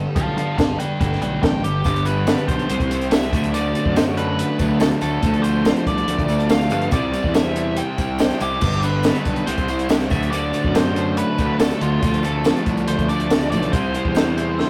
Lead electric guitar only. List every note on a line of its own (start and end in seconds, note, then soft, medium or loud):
0.16 0.36 F5 medium
0.16 0.36 A5 medium
0.38 0.56 F5 medium
0.38 0.57 A5 medium
0.58 0.77 F5 medium
0.58 0.79 A5 medium
0.79 0.98 B4 medium
0.79 0.99 G5 medium
1.00 1.20 B4 medium
1.00 1.21 G5 medium
1.22 1.41 B4 medium
1.22 1.42 G5 medium
1.43 1.83 G5 loud
1.64 2.07 G4 medium
2.05 2.45 B4 medium
2.48 3.13 C5 medium
3.12 3.54 E5 loud
3.54 3.97 D5 loud
3.96 4.02 C5 medium
4.17 4.80 B4 medium
4.81 4.86 A4 loud
5.02 5.42 A4 loud
5.43 5.87 C5 medium
5.87 6.50 D5 medium
6.51 6.92 F5 loud
6.92 7.35 D5 loud
7.35 7.79 E5 medium
7.78 8.17 G5 loud
8.20 8.40 G5 loud
8.42 8.85 G4 loud
8.84 9.43 B4 medium
9.46 9.91 C5 loud
9.90 9.96 E5 loud
10.11 10.31 E5 medium
10.31 10.76 D5 loud
10.75 11.15 C5 medium
11.18 11.60 B4 medium
11.60 11.82 A4 medium
11.82 12.21 F4 medium
12.25 12.64 A4 medium
12.88 13.08 C5 loud
13.09 13.50 D5 loud
13.51 13.71 D5 medium
13.72 14.70 C5 medium